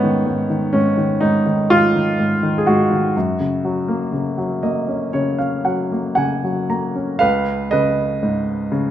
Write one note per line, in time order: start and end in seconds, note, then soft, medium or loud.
0.00 0.26 G#2 medium
0.00 0.03 D#3 soft
0.00 0.48 D#3 soft
0.00 0.76 B3 medium
0.00 0.73 C#4 medium
0.26 0.73 G#2 soft
0.50 0.96 D#3 soft
0.73 1.21 G#2 soft
0.73 1.22 C#4 medium
0.97 1.45 D#3 soft
1.21 1.69 G#2 soft
1.21 1.71 D#4 medium
1.46 1.94 D#3 soft
1.70 2.18 G#2 soft
1.70 2.63 F4 medium
1.95 2.41 D#3 soft
2.19 2.67 G#2 soft
2.43 2.90 D#3 soft
2.58 2.66 G#4 medium
2.67 3.14 G#2 soft
2.67 6.65 F#4 medium
2.91 3.15 D#3 soft
3.17 7.17 F#2 soft
3.40 4.11 C#3 soft
3.64 4.36 F#3 soft
3.88 4.61 A#3 soft
4.13 5.12 C#3 soft
4.38 5.64 F#3 soft
4.63 5.90 A#3 soft
4.63 5.10 D#5 soft
4.88 5.37 C#4 soft
5.13 6.15 C#3 soft
5.13 5.37 C#5 soft
5.38 6.94 C#4 soft
5.38 5.63 F5 soft
5.65 6.42 F#3 soft
5.65 6.13 F#5 soft
5.92 6.68 A#3 soft
6.15 7.17 C#3 soft
6.15 7.23 F#5 medium
6.15 6.66 G#5 soft
6.44 7.19 F#3 soft
6.69 7.19 A#3 soft
6.69 7.17 A#5 soft
6.95 7.20 C#4 soft
7.19 8.91 C#2 medium
7.19 7.71 B4 medium
7.19 7.72 F5 medium
7.71 8.70 C#3 soft
7.71 8.91 B4 medium
7.71 8.91 D#5 medium
8.23 8.91 G#2 soft
8.72 8.91 C#3 soft